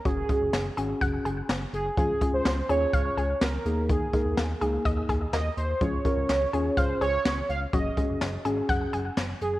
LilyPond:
<<
  \new Staff \with { instrumentName = "Analog polysynth" } { \time 4/4 \key des \major \tempo 4 = 125 aes'2 r4. aes'8 | aes'8. c''8. des''8 des''4 bes'4 | aes'2 r4 ees''8 c''8 | des''2 c''8 des''4 f''8 |
ees''4 r2 r8 aes'8 | }
  \new Staff \with { instrumentName = "Synth keys" } { \time 4/4 \key des \major <des' ges' aes'>8 <des' ges' aes'>8 r8 <des' ges' aes'>4 r4. | <des' f' aes'>8 <des' f' aes'>8 r8 <des' f' aes'>4 r4 <bes ees' aes'>8~ | <bes ees' aes'>8 <bes ees' bes'>8 r8 <bes ees' aes'>4 r4. | <des' f' aes'>8 <des' f' bes'>8 r8 <des' f' aes'>4 r4. |
<des' ges' aes'>8 <des' ges' aes'>8 r8 <des' ges' aes'>4 r4. | }
  \new Staff \with { instrumentName = "Synth arpeggio sound" } { \time 4/4 \key des \major ges8 aes8 des'8 aes'8 ges''8 aes'8 des'8 r8 | f8 aes8 des'8 aes'8 f''8 aes'8 des'8 r8 | ees8 aes8 bes8 aes'8 ees''8 aes'8 bes8 r8 | f8 aes8 des'8 aes'8 f''8 aes'8 des'8 r8 |
ges8 aes8 des'8 aes'8 ges''8 aes'8 des'8 r8 | }
  \new Staff \with { instrumentName = "Analog synth bass" } { \clef bass \time 4/4 \key des \major ges,,8 r16 ges,,16 ges,,8 aes,,8 ges,,8 ges,,8 ges,,8 ges,,8 | des,8 r16 des,16 des,8 ees,8 des,8 des,8 des,8 ees,8~ | ees,8 r16 ees,16 ees,8 des,8 ees,8 ees,8 ees,8 ees,8 | des,8 r16 des,16 des,8 ees,8 des,8 des,8 des,8 des,8 |
ges,,8 r16 ges,,16 ges,,8 aes,,8 ges,,8 ges,,8 ges,,8 ges,,8 | }
  \new DrumStaff \with { instrumentName = "Drums" } \drummode { \time 4/4 <hh bd>8 <hh bd>8 <hh sn>8 hh8 <hh bd>8 hh8 <hh sn>8 hh8 | <hh bd>8 <hh bd>8 <hh sn>8 hh8 <hh bd>8 hh8 <hh sn>8 hh8 | <hh bd>8 <hh bd>8 <hh sn>8 hh8 <hh bd>8 <hh bd>8 <hh sn>8 hh8 | <hh bd>8 <hh bd>8 <hh sn>8 hh8 <hh bd>8 hh8 <hh sn>8 hh8 |
<hh bd>8 <hh bd>8 <hh sn>8 hh8 <hh bd>8 hh8 <hh sn>8 hh8 | }
>>